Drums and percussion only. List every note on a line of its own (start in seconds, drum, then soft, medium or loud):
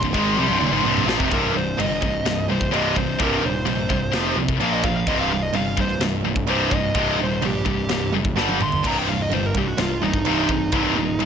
0.03 kick medium
0.14 kick medium
0.37 high tom medium
0.61 mid tom medium
0.85 mid tom medium
0.97 mid tom medium
1.09 snare loud
1.20 kick medium
1.31 kick loud
1.31 china medium
1.80 china medium
2.02 kick medium
2.26 snare loud
2.26 china medium
2.61 kick medium
2.74 china medium
2.96 kick medium
3.19 kick loud
3.19 china medium
3.66 china medium
3.90 kick medium
4.13 snare loud
4.13 china medium
4.48 kick medium
4.60 china medium
4.84 kick medium
5.07 kick loud
5.07 china medium
5.53 china medium
5.77 kick medium
6.01 snare loud
6.01 china medium
6.36 kick medium
6.47 china medium
6.71 kick medium
6.95 kick loud
6.95 china medium
7.42 china medium
7.66 kick medium
7.89 snare loud
7.89 china soft
8.25 kick medium
8.37 snare medium
8.49 high tom medium
8.61 mid tom medium
8.72 floor tom medium
8.84 kick loud
8.84 crash medium
8.84 china medium
9.31 china medium
9.55 kick medium
9.78 snare loud
9.78 china medium
10.14 kick medium
10.25 china medium
10.49 kick medium
10.72 kick loud
10.72 china medium
11.20 china medium